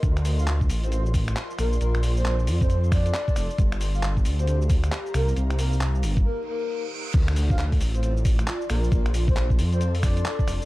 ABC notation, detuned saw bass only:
X:1
M:4/4
L:1/8
Q:"Swing 16ths" 1/4=135
K:Dphr
V:1 name="Detuned saw bass" clef=bass
D,,3 A,,,3 z B,,, | B,,,3 F,,3 z F,,, | G,,,3 D,,3 z C,, | C,,3 G,,, z4 |
D,,3 A,,,3 z B,,, | B,,,3 F,,3 z F,,, |]